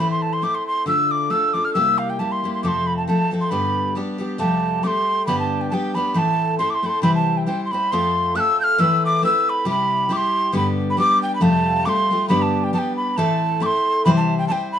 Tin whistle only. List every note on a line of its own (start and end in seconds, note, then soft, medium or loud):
0.00 0.10 B5 medium
0.11 0.24 C6 medium
0.22 0.34 A5 medium
0.33 0.45 C6 medium
0.43 0.56 D6 medium
0.55 0.66 C6 medium
0.67 0.86 C6 medium
0.88 1.13 E6 medium
1.11 1.32 D6 loud
1.31 1.55 E6 medium
1.54 1.66 D6 medium
1.65 1.73 F6 medium
1.73 2.00 E6 loud
1.98 2.11 F5 medium
2.10 2.21 G5 medium
2.19 2.33 A5 medium
2.32 2.53 C6 medium
2.54 2.63 C6 medium
2.64 2.69 D6 medium
2.68 2.88 C6 medium
2.87 2.96 B5 medium
2.97 3.06 A5 medium
3.08 3.30 A5 medium
3.41 3.52 C6 medium
3.50 3.95 B5 medium
4.40 4.85 A5 medium
4.84 5.26 C6 medium
4.84 4.88 D6 medium
5.26 5.38 B5 medium
5.39 5.63 A5 medium
5.61 5.69 G5 medium
5.70 5.96 G5 medium
5.70 5.75 A5 medium
5.95 6.08 B5 medium
6.08 6.13 B5 medium
6.13 6.19 B5 medium
6.18 6.58 A5 loud
6.58 6.72 C6 medium
6.70 6.76 D6 medium
6.74 6.88 C6 medium
6.86 6.89 B5 medium
6.86 7.02 C6 medium
7.03 7.14 B5 loud
7.15 7.39 A5 medium
7.37 7.46 G5 medium
7.47 7.63 G5 medium
7.65 7.73 C6 medium
7.71 7.93 B5 medium
7.92 8.37 C6 medium
8.36 8.41 F#6 loud
8.40 8.59 E6 loud
8.61 8.81 F6 loud
8.61 8.65 G6 loud
8.80 9.03 E6 loud
9.05 9.22 D6 medium
9.25 9.51 E6 medium
9.50 9.68 B5 medium
9.70 10.14 B5 loud
10.13 10.18 D6 medium
10.17 10.55 C6 medium
10.57 10.66 B5 medium
10.90 10.98 B5 medium
10.99 11.21 D6 loud
11.23 11.35 G5 medium
11.35 11.43 B5 medium
11.42 11.87 A5 loud
11.85 12.28 C6 loud
11.85 11.90 D6 medium
12.29 12.43 B5 medium
12.42 12.65 A5 medium
12.64 12.73 G5 medium
12.74 12.80 A5 medium
12.79 12.96 G5 medium
12.97 13.18 B5 medium
13.17 13.64 A5 loud
13.62 14.04 C6 medium
13.62 13.67 D6 medium
14.05 14.10 B5 loud
14.17 14.37 A5 medium
14.38 14.47 G5 medium
14.48 14.53 A5 medium
14.52 14.70 G5 medium
14.72 14.79 B5 medium